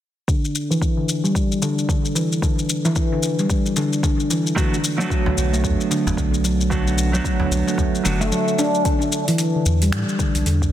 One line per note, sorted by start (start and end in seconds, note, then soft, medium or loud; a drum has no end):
0.28 0.37 D3 medium
0.28 kick loud
0.28 shaker soft
0.45 shaker soft
0.55 shaker medium
0.71 0.96 E3 medium
0.71 shaker soft
0.82 kick medium
0.82 shaker soft
0.97 1.08 D3 medium
1.09 shaker medium
1.24 1.61 G3 medium
1.24 shaker soft
1.35 kick medium
1.35 shaker soft
1.52 shaker soft
1.62 1.77 D3 medium
1.62 shaker medium
1.78 shaker soft
1.89 2.15 D3 medium
1.89 kick medium
1.89 shaker soft
2.05 shaker soft
2.15 2.41 E3 medium
2.15 shaker medium
2.32 shaker soft
2.42 2.52 D3 medium
2.42 kick loud
2.42 shaker soft
2.59 shaker soft
2.69 shaker medium
2.85 3.10 E3 medium
2.85 shaker soft
2.96 kick medium
2.96 shaker soft
3.12 3.22 D3 medium
3.23 shaker medium
3.39 3.75 G3 medium
3.39 shaker soft
3.50 kick medium
3.50 shaker soft
3.66 shaker soft
3.76 3.92 D3 medium
3.76 shaker medium
3.93 shaker soft
4.03 4.29 D3 medium
4.03 kick medium
4.03 shaker soft
4.20 shaker soft
4.30 4.56 E3 medium
4.30 shaker medium
4.47 shaker soft
4.56 4.66 D3 medium
4.56 4.75 F#3 medium
4.56 4.75 A3 medium
4.56 4.75 B3 medium
4.56 4.76 D4 medium
4.56 4.76 F#4 medium
4.56 kick loud
4.56 shaker soft
4.74 shaker soft
4.84 shaker medium
4.98 6.68 F#3 medium
4.98 5.25 F#3 medium
4.98 6.68 A3 medium
4.98 6.69 B3 medium
4.98 6.69 D4 medium
4.98 shaker soft
5.02 6.70 F#4 medium
5.10 kick loud
5.10 shaker soft
5.26 5.37 D3 medium
5.26 udu medium
5.37 5.65 B1 medium
5.37 shaker medium
5.53 5.90 A3 medium
5.53 shaker soft
5.64 5.76 E2 medium
5.64 kick medium
5.64 shaker soft
5.80 shaker soft
5.91 6.06 D3 medium
5.91 shaker medium
6.06 6.14 F#1 medium
6.06 udu medium
6.06 shaker soft
6.17 7.20 B1 medium
6.17 6.43 D3 medium
6.17 kick medium
6.17 shaker soft
6.34 shaker soft
6.44 6.70 F#3 medium
6.44 shaker medium
6.61 shaker soft
6.70 6.80 D3 medium
6.70 7.10 F#3 medium
6.70 7.10 A3 medium
6.70 7.10 B3 medium
6.70 7.10 D4 medium
6.70 7.11 F#4 loud
6.70 kick loud
6.70 shaker soft
6.87 shaker soft
6.98 shaker medium
7.12 8.02 F#3 medium
7.12 7.39 F#3 medium
7.12 8.02 A3 medium
7.12 8.03 B3 medium
7.12 8.03 D4 medium
7.12 shaker soft
7.16 8.04 F#4 medium
7.25 kick loud
7.25 shaker soft
7.40 7.51 D3 medium
7.40 udu medium
7.51 7.63 B1 loud
7.51 shaker medium
7.67 8.04 A3 medium
7.67 shaker soft
7.78 kick loud
7.78 udu medium
7.78 shaker soft
7.95 shaker soft
8.03 8.32 F#1 medium
8.03 8.14 D3 medium
8.03 8.23 F#3 medium
8.03 8.23 A3 medium
8.03 8.23 B3 medium
8.03 8.23 D4 medium
8.03 8.24 F#4 medium
8.03 shaker medium
8.21 8.27 A3 loud
8.21 shaker soft
8.32 8.46 F#3 medium
8.32 shaker soft
8.48 shaker soft
8.59 8.74 D4 loud
8.59 shaker medium
8.75 shaker soft
8.85 8.95 D3 medium
8.85 kick loud
8.85 open hi-hat medium
8.85 shaker soft
9.02 shaker soft
9.12 shaker medium
9.28 9.53 E3 loud
9.28 open hi-hat soft
9.28 shaker soft
9.38 open hi-hat medium
9.38 shaker soft
9.55 9.65 D3 medium
9.66 9.93 E2 loud
9.66 shaker medium
9.82 10.19 G3 medium
9.82 open hi-hat soft
9.82 shaker soft
9.92 10.04 A2 medium
9.92 finger snap medium
9.92 open hi-hat medium
9.92 shaker soft
10.09 shaker soft
10.19 10.35 D3 medium
10.19 kick medium
10.19 shaker medium
10.35 10.43 B1 medium
10.35 open hi-hat soft
10.35 shaker soft
10.46 10.72 E2 medium
10.46 10.72 D3 medium
10.46 open hi-hat medium
10.46 shaker soft
10.62 kick medium
10.62 shaker soft